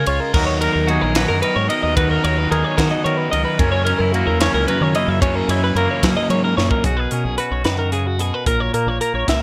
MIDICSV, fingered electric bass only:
0, 0, Header, 1, 2, 480
1, 0, Start_track
1, 0, Key_signature, 5, "major"
1, 0, Tempo, 541516
1, 314, Time_signature, 6, 3, 24, 8
1, 8356, End_track
2, 0, Start_track
2, 0, Title_t, "Fingered electric bass"
2, 0, Program_c, 0, 33
2, 63, Note_on_c, 0, 37, 91
2, 164, Note_off_c, 0, 37, 0
2, 299, Note_on_c, 0, 39, 99
2, 594, Note_off_c, 0, 39, 0
2, 667, Note_on_c, 0, 39, 91
2, 862, Note_off_c, 0, 39, 0
2, 907, Note_on_c, 0, 34, 89
2, 1102, Note_off_c, 0, 34, 0
2, 1147, Note_on_c, 0, 42, 94
2, 1245, Note_off_c, 0, 42, 0
2, 1383, Note_on_c, 0, 44, 95
2, 1483, Note_off_c, 0, 44, 0
2, 1623, Note_on_c, 0, 39, 83
2, 1916, Note_off_c, 0, 39, 0
2, 1987, Note_on_c, 0, 39, 84
2, 2182, Note_off_c, 0, 39, 0
2, 2228, Note_on_c, 0, 39, 100
2, 2326, Note_off_c, 0, 39, 0
2, 2463, Note_on_c, 0, 51, 111
2, 2562, Note_off_c, 0, 51, 0
2, 2706, Note_on_c, 0, 51, 84
2, 2901, Note_off_c, 0, 51, 0
2, 2948, Note_on_c, 0, 37, 88
2, 3046, Note_off_c, 0, 37, 0
2, 3185, Note_on_c, 0, 42, 105
2, 3476, Note_off_c, 0, 42, 0
2, 3542, Note_on_c, 0, 42, 104
2, 3738, Note_off_c, 0, 42, 0
2, 3784, Note_on_c, 0, 40, 90
2, 3979, Note_off_c, 0, 40, 0
2, 4025, Note_on_c, 0, 37, 91
2, 4123, Note_off_c, 0, 37, 0
2, 4264, Note_on_c, 0, 51, 89
2, 4363, Note_off_c, 0, 51, 0
2, 4499, Note_on_c, 0, 42, 84
2, 4793, Note_off_c, 0, 42, 0
2, 4861, Note_on_c, 0, 42, 86
2, 5057, Note_off_c, 0, 42, 0
2, 5099, Note_on_c, 0, 42, 97
2, 5200, Note_off_c, 0, 42, 0
2, 5345, Note_on_c, 0, 54, 112
2, 5444, Note_off_c, 0, 54, 0
2, 5581, Note_on_c, 0, 54, 84
2, 5777, Note_off_c, 0, 54, 0
2, 5828, Note_on_c, 0, 42, 84
2, 5925, Note_off_c, 0, 42, 0
2, 6064, Note_on_c, 0, 35, 94
2, 6259, Note_off_c, 0, 35, 0
2, 6308, Note_on_c, 0, 47, 75
2, 6421, Note_on_c, 0, 35, 82
2, 6434, Note_off_c, 0, 47, 0
2, 6521, Note_off_c, 0, 35, 0
2, 6658, Note_on_c, 0, 35, 76
2, 6760, Note_off_c, 0, 35, 0
2, 6778, Note_on_c, 0, 42, 86
2, 7362, Note_off_c, 0, 42, 0
2, 7501, Note_on_c, 0, 34, 90
2, 7698, Note_off_c, 0, 34, 0
2, 7745, Note_on_c, 0, 46, 73
2, 7858, Note_on_c, 0, 34, 89
2, 7872, Note_off_c, 0, 46, 0
2, 7960, Note_off_c, 0, 34, 0
2, 8098, Note_on_c, 0, 34, 80
2, 8200, Note_off_c, 0, 34, 0
2, 8225, Note_on_c, 0, 37, 86
2, 8356, Note_off_c, 0, 37, 0
2, 8356, End_track
0, 0, End_of_file